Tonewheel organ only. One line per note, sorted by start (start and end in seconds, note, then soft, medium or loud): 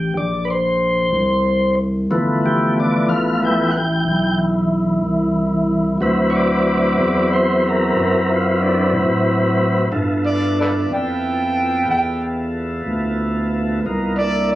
0.00 0.14 G4 medium
0.17 0.48 D5 medium
0.45 0.49 B4 medium
0.50 1.75 C5 medium
2.11 5.98 E3 medium
2.11 3.41 F3 medium
2.11 3.42 A3 medium
2.11 3.42 B3 medium
2.46 2.76 G4 loud
2.80 3.09 D5 medium
3.09 3.40 F5 medium
3.42 3.71 F3 medium
3.42 3.71 A3 soft
3.42 3.71 B3 soft
3.42 3.71 E4 medium
3.42 3.74 G5 medium
3.71 3.75 F#5 medium
3.77 4.38 G5 loud
6.01 9.88 F#3 medium
6.01 9.88 C4 medium
6.01 9.89 E4 medium
6.01 9.88 B4 medium
6.30 6.34 C#5 medium
6.35 7.29 D5 medium
7.33 7.64 C5 medium
7.69 7.98 A#4 medium
8.00 8.30 A#4 loud
8.31 8.62 F4 medium
8.62 8.93 D4 medium
9.92 13.80 B3 medium
9.92 13.80 E4 medium
9.92 13.80 F4 medium
9.92 13.80 A4 medium
13.86 14.18 B3 medium
13.86 14.17 D#4 medium
13.86 14.17 F4 medium
13.86 14.18 A#4 medium
14.18 14.55 A#3 medium
14.18 14.55 D4 medium
14.18 14.55 E4 medium
14.18 14.55 A4 medium